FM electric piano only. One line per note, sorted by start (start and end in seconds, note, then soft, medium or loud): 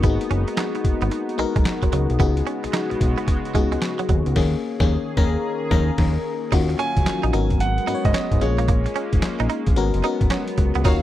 0.00 0.11 A#3 medium
0.00 0.09 B3 medium
0.00 0.03 D#4 medium
0.00 0.75 D#4 medium
0.00 0.04 F#4 medium
0.00 0.75 F#4 medium
0.00 1.39 A#4 medium
0.04 0.75 G#4 medium
0.09 0.78 B3 medium
1.38 1.90 B3 medium
1.38 1.90 D#4 medium
1.38 1.91 F#4 medium
1.38 1.91 A#4 loud
2.19 2.91 B3 medium
2.19 2.91 D#4 medium
2.19 2.91 F#4 medium
2.19 2.92 G#4 loud
3.54 4.07 B3 medium
3.54 4.07 D#4 medium
3.54 4.07 F#4 medium
3.54 4.07 G#4 medium
4.36 4.56 A#3 loud
4.36 4.56 C#4 loud
4.36 4.56 G#4 medium
4.80 4.97 A#3 loud
4.80 4.97 C#4 loud
4.80 4.98 G#4 loud
5.17 5.37 A#3 medium
5.17 5.37 C#4 loud
5.17 5.37 A#4 loud
5.17 5.37 A#5 loud
5.71 5.91 A#3 loud
5.71 5.91 C#4 loud
5.71 5.91 A#4 loud
5.71 5.91 A#5 loud
6.52 7.24 A#3 medium
6.52 7.24 C#4 medium
6.52 7.24 F4 medium
6.52 7.24 F#4 loud
7.33 7.79 B3 medium
7.33 7.79 C#4 medium
7.33 7.80 F#4 medium
7.33 7.80 A#4 medium
7.87 8.39 B3 medium
7.87 8.39 C#4 medium
7.87 8.39 F#4 medium
7.87 7.96 B4 medium
7.95 8.43 C#5 medium
8.41 9.29 A#3 medium
8.41 9.29 C#4 medium
8.41 9.30 F4 medium
8.41 9.30 G#4 medium
9.76 10.00 B3 medium
9.76 10.00 C#4 medium
9.76 10.00 F#4 medium
9.76 10.00 A#4 loud
10.03 10.55 B3 medium
10.03 10.56 C#4 medium
10.03 10.56 F#4 medium
10.03 10.56 A#4 medium
10.84 11.02 C#4 medium
10.84 11.02 F4 medium
10.84 11.02 F#4 medium
10.84 11.02 A#4 loud